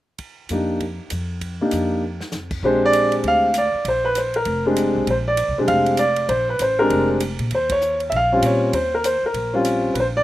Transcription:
0.18 kick soft
0.18 ride soft
0.49 0.98 F2 medium
0.49 0.81 A#3 soft
0.49 0.81 D4 soft
0.49 0.81 D#4 soft
0.49 0.81 G4 soft
0.49 hi-hat pedal soft
0.49 ride medium
0.80 kick soft
0.80 ride soft
1.10 1.59 F2 medium
1.10 hi-hat pedal medium
1.10 ride medium
1.41 kick soft
1.41 ride medium
1.61 2.01 A#3 medium
1.61 2.01 D4 soft
1.61 2.01 D#4 soft
1.61 2.01 G4 medium
1.71 2.20 F2 medium
1.71 hi-hat pedal soft
1.71 ride medium
2.20 snare medium
2.32 2.61 F2 medium
2.32 snare medium
2.32 hi-hat pedal medium
2.51 kick medium
2.51 crash medium
2.62 3.21 A#1 medium
2.62 3.48 G#3 medium
2.62 3.48 C4 medium
2.62 3.48 D4 medium
2.62 3.49 G4 medium
2.62 2.82 C5 medium
2.62 kick soft
2.85 3.12 D5 loud
2.93 hi-hat pedal soft
2.93 ride medium
3.12 ride soft
3.24 3.70 D2 medium
3.24 kick soft
3.24 ride soft
3.28 3.57 F5 loud
3.54 hi-hat pedal medium
3.54 ride medium
3.58 3.85 D5 medium
3.74 muted upright bass stroke soft
3.85 4.43 A#1 medium
3.85 4.06 C5 medium
3.85 kick soft
3.85 ride medium
4.05 4.17 B4 medium
4.15 4.34 C5 medium
4.15 hi-hat pedal medium
4.15 ride medium
4.34 4.64 A#4 medium
4.34 ride soft
4.45 4.92 F1 medium
4.45 kick soft
4.45 ride medium
4.66 5.05 G#3 medium
4.66 5.06 C4 medium
4.66 5.06 D4 medium
4.66 5.06 G4 medium
4.76 hi-hat pedal medium
4.76 ride medium
4.95 5.06 B1 medium
5.07 5.45 A#1 medium
5.07 5.15 C5 medium
5.07 kick soft
5.07 ride medium
5.28 5.55 D5 medium
5.37 hi-hat pedal medium
5.37 ride medium
5.48 5.57 C2 medium
5.58 5.68 B1 medium
5.58 5.97 G#3 medium
5.58 5.97 C4 medium
5.58 5.98 D4 medium
5.58 5.98 G4 medium
5.68 6.26 F1 medium
5.68 5.99 F5 loud
5.68 kick soft
5.68 ride medium
5.86 ride soft
5.97 6.30 D5 medium
5.97 hi-hat pedal medium
5.97 ride medium
6.16 ride soft
6.29 6.57 A#1 medium
6.29 6.46 C5 medium
6.29 kick soft
6.29 ride medium
6.49 6.61 B4 medium
6.59 6.88 A1 medium
6.59 6.78 C5 medium
6.59 hi-hat pedal medium
6.59 ride medium
6.79 7.19 G#3 medium
6.79 7.19 C4 medium
6.79 7.20 D4 medium
6.79 7.20 G4 medium
6.79 7.07 A#4 medium
6.90 7.36 F1 medium
6.90 kick soft
6.90 ride soft
7.20 hi-hat pedal medium
7.20 ride medium
7.39 7.50 A#2 medium
7.39 ride soft
7.51 8.09 D#2 medium
7.51 7.70 C5 medium
7.51 kick soft
7.51 ride medium
7.70 7.99 C#5 medium
7.70 kick medium
7.70 ride medium
7.81 hi-hat pedal medium
8.00 ride soft
8.10 8.41 A#1 medium
8.10 8.14 E5 medium
8.10 kick soft
8.10 ride medium
8.16 8.43 F5 loud
8.32 8.72 G3 medium
8.32 8.72 C4 medium
8.32 8.72 C#4 medium
8.32 8.72 F4 medium
8.42 8.71 A#2 medium
8.42 8.73 C#5 medium
8.42 hi-hat pedal medium
8.42 ride medium
8.73 9.19 D#2 medium
8.73 8.93 C5 medium
8.73 kick soft
8.73 ride medium
8.94 9.05 A#4 medium
9.04 9.22 C5 medium
9.04 hi-hat pedal medium
9.04 ride medium
9.23 9.53 A#4 medium
9.23 muted upright bass stroke soft
9.34 9.92 A#1 medium
9.34 kick soft
9.34 ride medium
9.53 9.93 G3 medium
9.53 9.93 C4 medium
9.53 9.94 C#4 medium
9.53 9.94 F4 medium
9.65 hi-hat pedal medium
9.65 ride medium
9.94 10.23 A#1 medium
9.94 9.96 B4 medium
9.94 kick soft
9.94 ride medium
10.00 10.05 C5 medium
10.17 10.23 D5 loud

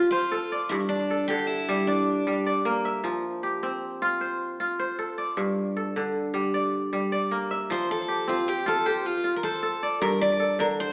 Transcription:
0.00 0.72 F3 medium
0.00 0.77 C4 medium
0.00 1.44 F4 medium
0.00 0.12 C5 medium
0.11 0.72 F4 medium
0.11 1.31 C5 medium
0.32 1.10 A4 medium
0.52 1.63 D5 medium
0.69 3.05 G2 medium
0.69 0.75 E4 medium
0.89 1.25 D4 medium
1.10 2.42 A4 medium
1.28 3.09 D3 medium
1.28 1.47 G4 medium
1.47 1.88 E4 medium
1.69 2.26 G3 medium
1.87 2.61 D4 medium
1.87 2.46 D5 medium
2.27 3.09 G3 medium
2.46 3.57 D5 medium
2.65 4.58 A#3 medium
2.85 3.88 E5 medium
3.04 5.38 F3 medium
3.43 4.84 G4 medium
3.63 5.43 C4 medium
4.02 4.60 F4 medium
4.21 4.79 C5 medium
4.60 6.11 F4 medium
4.79 5.98 C5 medium
4.99 5.76 A4 medium
5.18 6.29 D5 medium
5.37 7.71 G2 medium
5.77 7.08 A4 medium
5.96 7.74 D3 medium
6.34 6.92 G3 medium
6.54 7.12 D5 medium
6.93 7.74 G3 medium
7.12 8.23 D5 medium
7.31 9.24 A#3 medium
7.51 8.54 E5 medium
7.70 10.04 F3 medium
7.70 7.90 C5 medium
7.91 8.29 A4 medium
8.08 9.50 G4 medium
8.28 10.08 C4 medium
8.28 8.48 F4 medium
8.48 8.67 G4 medium
8.66 9.24 F4 medium
8.66 8.86 A4 medium
8.86 9.06 G4 medium
8.86 9.44 C5 medium
9.06 9.36 F4 medium
9.24 10.75 F4 medium
9.36 9.43 A#4 medium
9.43 10.01 A4 medium
9.43 10.63 C5 medium
9.63 10.39 A4 medium
9.83 10.93 D5 medium
10.02 10.93 G2 medium
10.02 10.21 A#4 medium
10.21 10.60 D5 medium
10.40 10.93 A4 medium
10.59 10.93 D3 medium
10.59 10.65 A#4 medium
10.80 10.93 C5 medium

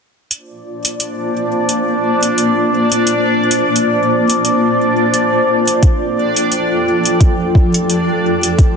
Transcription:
0.31 5.79 A#3 medium
0.31 8.77 D4 medium
0.31 8.77 F4 medium
0.31 5.79 C5 medium
0.31 8.77 D5 medium
0.31 5.79 D5 medium
0.31 closed hi-hat medium
0.85 closed hi-hat medium
1.00 closed hi-hat soft
1.69 closed hi-hat medium
2.23 closed hi-hat medium
2.38 closed hi-hat medium
2.92 closed hi-hat medium
3.07 closed hi-hat soft
3.51 closed hi-hat medium
3.76 closed hi-hat soft
4.30 closed hi-hat medium
4.45 closed hi-hat medium
5.14 closed hi-hat medium
5.67 closed hi-hat medium
5.82 8.77 F3 medium
5.82 8.77 A4 medium
5.82 8.77 G5 medium
5.82 kick medium
5.82 closed hi-hat medium
6.36 closed hi-hat medium
6.52 closed hi-hat medium
7.05 closed hi-hat medium
7.21 kick medium
7.21 closed hi-hat medium
7.55 kick medium
7.74 closed hi-hat medium
7.90 closed hi-hat medium
8.43 closed hi-hat medium
8.59 kick medium
8.59 closed hi-hat soft

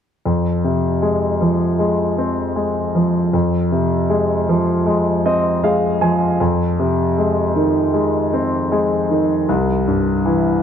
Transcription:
0.26 3.29 F2 soft
0.64 2.14 C3 soft
1.02 1.77 G#3 soft
1.41 2.91 F3 soft
1.79 2.54 G#3 soft
2.18 3.30 C4 soft
2.56 3.30 G#3 soft
2.95 3.32 F3 soft
3.33 6.37 F2 soft
3.72 5.21 C3 soft
4.10 4.85 G#3 soft
4.49 5.98 F3 soft
4.86 5.62 G#3 soft
5.25 6.37 C4 soft
5.25 5.61 D#5 soft
5.63 6.38 G#3 soft
5.63 5.99 F5 soft
6.01 6.39 F3 soft
6.01 6.37 G#5 soft
6.40 9.44 F2 soft
6.79 8.29 C3 soft
7.18 7.92 G#3 soft
7.56 9.06 D#3 soft
7.94 8.70 G#3 soft
8.34 9.45 C4 soft
8.72 9.46 G#3 soft
9.10 9.47 D#3 soft
9.49 10.63 C2 soft
9.87 10.63 G2 soft
10.25 10.63 E3 soft

